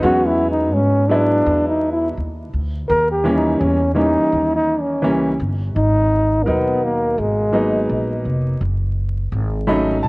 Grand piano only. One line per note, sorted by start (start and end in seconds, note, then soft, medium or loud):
0.00 1.04 F#3 medium
0.00 1.04 G#3 medium
0.00 1.05 B3 medium
0.00 0.24 D#4 medium
0.04 1.05 C#4 medium
1.09 2.11 F#3 medium
1.09 2.11 G#3 medium
1.09 2.12 B3 medium
1.09 2.12 E4 medium
3.24 3.77 E3 medium
3.24 3.78 G3 medium
3.24 3.78 A#3 medium
3.24 3.78 C#4 medium
3.95 4.97 E3 medium
3.95 4.97 G3 medium
3.95 4.97 A#3 medium
3.95 4.97 C#4 medium
5.02 5.30 E3 medium
5.02 5.30 G3 medium
5.02 5.31 A#3 medium
5.02 5.31 C#4 medium
6.45 7.48 B2 medium
6.45 7.47 F#3 medium
6.45 7.48 D#4 medium
6.45 7.47 A#4 medium
7.52 8.54 F#3 medium
7.52 8.54 A#3 medium
7.52 8.55 B3 medium
7.52 8.55 D#4 medium
9.67 9.94 F#3 medium
9.67 9.94 A3 medium
9.67 9.95 C#4 medium
9.67 9.95 D#4 medium
9.67 10.00 B5 medium
10.02 10.08 A5 medium